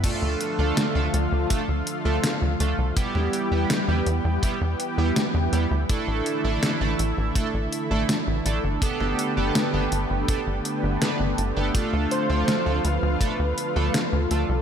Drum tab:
CC |x---------------|----------------|----------------|----------------|
HH |x-x-x-x-x-x-x-x-|x-x-x-x-x-x-x-x-|x-x-x-x-x-x-x-x-|x-x-x-x-x-x-x-x-|
SD |----o-------o---|-o--o-------o---|----o-------o---|-o--o-------o---|
BD |o-------o-------|o-------o-------|o-------o-------|o-------o-------|

CC |----------------|
HH |x-x-x-x-x-x-x-x-|
SD |----o-------o---|
BD |o-------o-------|